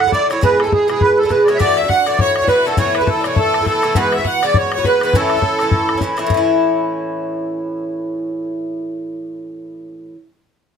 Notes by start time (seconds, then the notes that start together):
0.00 F#5
0.07 F#3 E4 A4, bodhran
0.12 D3 F#3 E4 A4 D5, bodhran
0.30 D3 F#3 E4 A4 C#5, bodhran
0.41 B2 G#3 E4 G#4 B4, bodhran
0.60 A4, bodhran
0.64 G#3 E4 G#4, bodhran
0.72 G#4, bodhran
0.88 B2 G#3 E4 G#4, bodhran
1.01 B4, bodhran
1.18 A4
1.23 G#3 E4 G#4, bodhran
1.29 B2 G#3 E4 G#4 B4, bodhran
1.43 D5
1.48 B2 G#3 E4 G#4 C#5, bodhran
1.55 D5 E5
1.59 A2 E3 D4 F#4 D5, bodhran
1.76 E5, bodhran
1.83 E3 D4 F#4, bodhran
1.88 F#5, bodhran
2.06 A2 E3 D4 F#4 D5, bodhran
2.19 C#5, bodhran
2.36 C#5, bodhran
2.42 E3 D4 F#4, bodhran
2.48 A2 E3 D4 F#4 B4, bodhran
2.66 A2 E3 D4 F#4 A4
2.77 B2 E3 A3 E4 C#5, bodhran
2.95 B4, bodhran
3.01 E3 A3 E4, bodhran
3.06 A4, bodhran
3.20 B2 C#5 D5
3.24 E3 A3 E4 C#5, bodhran
3.36 A4, bodhran
3.54 bodhran
3.61 E3 A3 E4, bodhran
3.65 B2 E3 A3 E4 A4, bodhran
3.82 B2 E3 A3 E4, bodhran
3.94 G#2 E3 B3 F#4 B4, bodhran
4.00 B4
4.12 E5, bodhran
4.18 E3 B3 F#4, bodhran
4.24 F#5, bodhran
4.43 G#2 E3 B3 F#4 D5, bodhran
4.54 C#5, bodhran
4.72 C#5, bodhran
4.77 E3 B3 F#4, bodhran
4.84 G#2 E3 B3 F#4 B4, bodhran
5.01 G#2 E3 B3 F#4 B4, bodhran
5.13 A2 E3 C#4 E4 A4, bodhran
5.30 bodhran
5.36 E3 C#4 E4, bodhran
5.42 bodhran
5.59 A2 E3 C#4 E4, bodhran
5.71 bodhran
5.89 bodhran
5.95 C#4 E4, bodhran
5.99 A2 E3 C#4, bodhran
6.04 E4
6.17 A2 E3 C#4 E4, bodhran
6.26 A2 E3, bodhran
6.34 C#4 E4